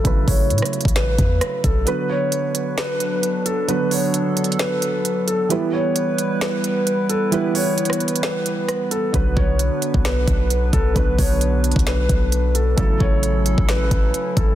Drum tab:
HH |x-----o-----x-x-x-x-x-x-x-----x-----x-----x-----|x-----------x-----x-----x-----x-----x-----x-----|x-----o-----x-----x-x-x-x-----x-----x-----x-----|x-----------x-----x-----x-----x-----x-----x-----|
SD |---------------r--------o-----------r-----------|------------------------o-----------------------|------------------------o-----------------------|------------------------o-----------------------|
BD |o-----o--------------o--------o-----------o-----|------------------------------------------------|------------------------------------------------|------------------------------------------------|

HH |x-----o-----x-x-x-x-x-x-x-----x-----x-----x-----|x-----------x-----x-----x-----x-----x-----x-----|x-----o-----x-----x-x-x-x-----x-----x-----x-----|x-----------x-----x-----x-----x-----x-----x-----|
SD |---------------r--------o-----------r-----------|------------------------o-----------------------|------------------------o-----------------------|------------------------o-----------------------|
BD |------------------------------------------------|o-----o--------------o--------o-----------o-----|o-----o--------------o--------o-----------------|o-----o--------------o--------o-----------o-----|